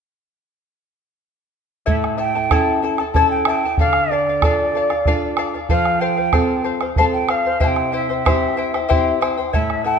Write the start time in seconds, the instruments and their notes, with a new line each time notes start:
1.86 nylon-string guitar A2, charango E4 A4 C#5 E5 A5, quena E5, bombo low
2.04 bombo rim
2.18 charango E4 A4 E5 A5, quena G5
2.35 charango E4 A4 A5, bombo rim
2.51 nylon-string guitar C#4 E4 A4, charango E4 A4 C#5 E5 A5, bombo rim, bombo low
2.82 charango E4 A4 E5 A5
2.98 charango E4 A4 A5, bombo rim
3.14 nylon-string guitar C#4 E4 A4, charango E4 A4 C#5 E5 A5, quena A5, bombo rim, bombo low
3.29 quena G5, bombo rim
3.45 charango E4 A4 E5 A5, quena G5, bombo rim
3.65 charango E4 A4 A5
3.78 nylon-string guitar D3, charango A4 D5 F5, quena F5, bombo low
3.93 bombo rim
4.11 charango A4 D5 F5, quena D5
4.27 charango D5 F5, bombo rim
4.41 nylon-string guitar D4 F4 A4, charango A4 D5 F5, bombo rim, bombo low
4.75 charango A4 D5 F5
4.90 charango D5 F5, bombo rim
5.06 nylon-string guitar D4 F4 A4, charango A4 D5 F5, bombo rim, bombo low
5.22 bombo rim
5.37 charango A4 D5 F5, bombo rim
5.54 charango D5 F5
5.69 nylon-string guitar F3, charango A4 C5 F5, quena F5, bombo low
5.85 bombo rim
6.00 charango A4 C5 F5, quena G5
6.16 charango C5 F5, bombo rim
6.33 nylon-string guitar C4 F4 A4, charango A4 C5 F5, bombo rim, bombo low
6.64 charango A4 C5 F5
6.81 charango C5 F5, bombo rim
6.96 nylon-string guitar C4 F4 A4, charango A4 C5 F5, quena A5, bombo rim, bombo low
7.13 quena G5, bombo rim
7.29 charango A4 C5 F5, quena F5, bombo rim
7.45 charango C5 F5
7.60 nylon-string guitar C3, charango E4 G4 C5 E5 G5, quena A5, bombo low
7.67 quena G5
7.76 bombo rim
7.92 charango E4 C5 E5 G5, quena E5
8.09 charango E4 C5 G5, bombo rim
8.25 nylon-string guitar C4 E4 G4, charango E4 G4 C5 E5 G5, bombo rim, bombo low
8.57 charango E4 C5 E5 G5
8.74 charango E4 C5 G5, bombo rim
8.89 nylon-string guitar C4 E4 G4, charango E4 G4 C5 E5 G5, bombo low
9.21 charango E4 C5 E5 G5, bombo rim
9.37 charango E4 C5 G5
9.48 quena G5
9.53 nylon-string guitar A2, charango E4 A4 C#5 E5 A5, quena E5, bombo low
9.70 bombo rim
9.84 charango E4 A4 E5 A5, quena G5